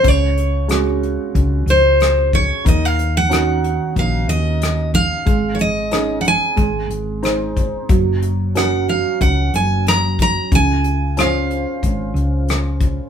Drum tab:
HH |xxxxxxxx|xxxxxxxx|xxxxxxxx|xxxxxxxx|
SD |--r---r-|--r---r-|--r---r-|--r---r-|
BD |o---o--o|o---o--o|o---o--o|o---o--o|

HH |xxxxxxxx|
SD |--r---r-|
BD |o---o--o|